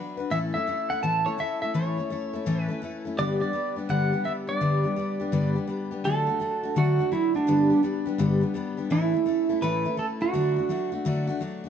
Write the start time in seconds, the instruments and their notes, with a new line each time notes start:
Already playing: steel-string acoustic guitar F#3 D4 F#4 B4
0.17 steel-string acoustic guitar D4 F#4 B4
0.31 steel-string acoustic guitar A2 E3 A3 C#4 E4 A4, pedal steel guitar E5
0.54 steel-string acoustic guitar A3 C#4 E4 A4, pedal steel guitar E5
0.67 steel-string acoustic guitar A3 C#4 E4 A4
0.90 steel-string acoustic guitar A3 C#4 E4 A4, pedal steel guitar F#5
1.03 steel-string acoustic guitar A2 E3 A3 C#4 E4 A4, pedal steel guitar A5
1.26 steel-string acoustic guitar A3 C#4 E4 A4, pedal steel guitar C#5
1.38 steel-string acoustic guitar A3 C#4 E4 A4, pedal steel guitar E5
1.62 steel-string acoustic guitar A3 C#4 E4 A4, pedal steel guitar E5
1.74 steel-string acoustic guitar A2 E3 A3 C#4 E4 A4, pedal steel guitar C#5
1.97 steel-string acoustic guitar A3 C#4 E4 A4
2.10 steel-string acoustic guitar A3 C#4 E4 A4
2.33 steel-string acoustic guitar A3 C#4 E4 A4
2.46 steel-string acoustic guitar A2 E3 A3 C#4 E4 A4
2.61 pedal steel guitar B4
2.68 steel-string acoustic guitar A3 C#4 E4 A4
2.82 steel-string acoustic guitar A3 C#4 E4 A4
3.05 steel-string acoustic guitar A3 C#4 E4 A4
3.18 steel-string acoustic guitar G2 D3 G3 B3 D4 G4, pedal steel guitar D5
3.40 steel-string acoustic guitar G3 B3 D4 G4, pedal steel guitar D5
3.53 steel-string acoustic guitar G3 B3 D4 G4
3.76 steel-string acoustic guitar G3 B3 D4 G4
3.89 steel-string acoustic guitar G2 D3 G3 B3 D4 G4, pedal steel guitar F#5
4.12 steel-string acoustic guitar G3 B3 D4 G4
4.25 steel-string acoustic guitar G3 B3 D4 G4, pedal steel guitar E5
4.47 steel-string acoustic guitar G3 B3 D4 G4, pedal steel guitar D5
4.61 steel-string acoustic guitar G2 D3 G3 B3 D4 G4
4.84 steel-string acoustic guitar G3 B3 D4 G4
4.96 steel-string acoustic guitar G3 B3 D4 G4
5.20 steel-string acoustic guitar G3 B3 D4 G4
5.32 steel-string acoustic guitar G2 D3 G3 B3 D4 G4
5.55 steel-string acoustic guitar G3 B3 D4 G4
5.67 steel-string acoustic guitar G3 B3 D4 G4
5.91 steel-string acoustic guitar G3 B3 D4 G4
6.04 steel-string acoustic guitar D3 F#3 A3 D4 F#4, pedal steel guitar A4
6.27 steel-string acoustic guitar A3 D4 F#4
6.40 steel-string acoustic guitar F#3 A3 D4 F#4
6.63 steel-string acoustic guitar A3 D4 F#4
6.76 steel-string acoustic guitar D3 F#3 A3 D4 F#4, pedal steel guitar F#4
6.99 steel-string acoustic guitar A3 D4 F#4
7.12 steel-string acoustic guitar F#3 A3 D4 F#4, pedal steel guitar E4
7.34 steel-string acoustic guitar A3 D4 F#4, pedal steel guitar D4
7.47 steel-string acoustic guitar G2 D3 G3 B3 D4 G4
7.70 steel-string acoustic guitar G3 B3 D4 G4
7.83 steel-string acoustic guitar G3 B3 D4 G4
8.06 steel-string acoustic guitar G3 B3 D4 G4
8.18 steel-string acoustic guitar G2 D3 G3 B3 D4 G4
8.41 steel-string acoustic guitar G3 B3 D4 G4
8.54 steel-string acoustic guitar G3 B3 D4 G4
8.77 steel-string acoustic guitar G3 B3 D4 G4
8.90 steel-string acoustic guitar A2 E3 A3 C#4 E4 A4, pedal steel guitar E4
9.13 steel-string acoustic guitar A3 C#4 E4 A4
9.26 steel-string acoustic guitar A3 C#4 E4 A4
9.49 steel-string acoustic guitar A3 C#4 E4 A4
9.62 steel-string acoustic guitar A2 E3 A3 C#4 E4 A4, pedal steel guitar B4
9.85 steel-string acoustic guitar A3 C#4 E4 A4
9.97 steel-string acoustic guitar A3 C#4 E4 A4, pedal steel guitar A4
10.20 steel-string acoustic guitar A3 C#4 E4 A4, pedal steel guitar F#4
10.33 steel-string acoustic guitar D3 F#3 A3 D4 F#4
10.56 steel-string acoustic guitar A3 D4 F#4
10.69 steel-string acoustic guitar F#3 A3 D4 F#4
10.92 steel-string acoustic guitar A3 D4 F#4
11.05 steel-string acoustic guitar D3 F#3 A3 D4 F#4
11.27 steel-string acoustic guitar A3 D4 F#4
11.41 steel-string acoustic guitar F#3 A3 D4 F#4
11.64 steel-string acoustic guitar D4 F#4